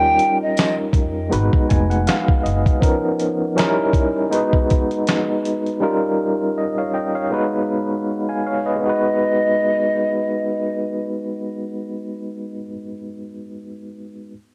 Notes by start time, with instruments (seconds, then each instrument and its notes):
Already playing: upright bass D#2, tine electric piano G3 C#4 D#4 F4 A#4, flute G5
0.19 closed hi-hat
0.43 flute D#5
0.57 snare, closed hi-hat, tambourine
0.93 upright bass F2, kick, closed hi-hat
1.29 upright bass G#1, tine electric piano G#3 B3 D#4 F#4 B4, closed hi-hat
1.53 muted upright bass stroke, kick
1.69 upright bass F1, tine electric piano G#5, kick, closed hi-hat
1.90 tine electric piano F#5, closed hi-hat
2.07 tine electric piano F5, snare, closed hi-hat, tambourine
2.28 kick
2.43 upright bass F#1, tine electric piano D#5, closed hi-hat
2.66 kick, closed hi-hat
2.80 tine electric piano F3 B3 C#4 D#4 A#4, kick, closed hi-hat
3.20 closed hi-hat
3.56 tine electric piano F#3 C#4 D#4 E4 A#4, snare, closed hi-hat
3.62 tine electric piano G3
3.93 kick, closed hi-hat
4.30 tine electric piano G#3 B3 D#4 F#4 B4, closed hi-hat
4.53 kick
4.70 kick, closed hi-hat
4.91 closed hi-hat
5.07 snare, closed hi-hat
5.45 closed hi-hat
5.66 closed hi-hat
5.80 tine electric piano G3 C#4 D#4 F4 A#4
6.58 tine electric piano D#5
6.78 tine electric piano C#5 F5
6.94 tine electric piano D#5 G5
7.15 tine electric piano C#5 F5
7.30 tine electric piano G#3 B3 D#4 F#4 B4
8.29 tine electric piano F5 G#5
8.46 tine electric piano C#5 F5
8.66 tine electric piano B4 D#5
8.76 tine electric piano G#3 B3
8.82 tine electric piano D#4 F#4, flute D#5
8.89 tine electric piano B4